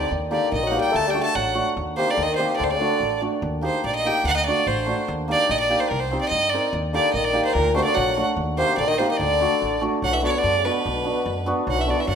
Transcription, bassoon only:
Already playing: D3
0.31 D3
0.51 D#3
0.64 F#3
0.78 G3
0.92 A3
1.08 G3
1.22 A3
1.35 F#3
1.98 C3
2.13 D3
2.25 D#3
2.38 C3
2.58 D3
2.72 D3
6.93 D3
7.14 D#3
7.55 A#2
7.76 C3
7.85 D3
7.95 F#3
8.58 C3
8.78 D3
8.87 D#3
8.98 C3
9.12 D#3
9.19 D3
10.03 F#3
10.13 E3
10.23 D3
10.36 D3
10.58 C#3
10.65 B2
11.68 F#3
11.79 E3
11.88 D3
11.98 E3
12.07 F#3

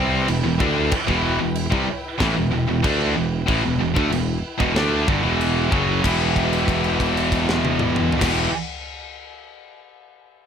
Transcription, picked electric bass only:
Already playing: C2
0.30 E1
0.46 E1
0.60 D2
1.08 E1
1.41 E1
1.72 C2
1.89 muted picked electric bass stroke
2.20 A1
2.37 E1
2.53 E1
2.69 E1
2.85 D2
3.17 E1
3.49 A1
3.64 E1
3.80 E1
3.97 D2
4.11 E1
4.60 E1
4.75 D2
5.08 G1
5.23 E1
5.72 F#1
6.04 E1
8.21 E1

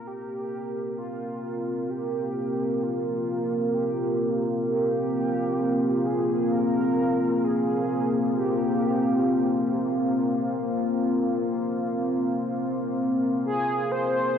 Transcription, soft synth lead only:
0.07 G4
0.98 F4
1.90 G4
2.83 F4
3.74 G4
4.66 G4
6.06 G#4
6.52 A#4
7.44 G#4
8.36 G4
13.46 G#4
13.91 C5

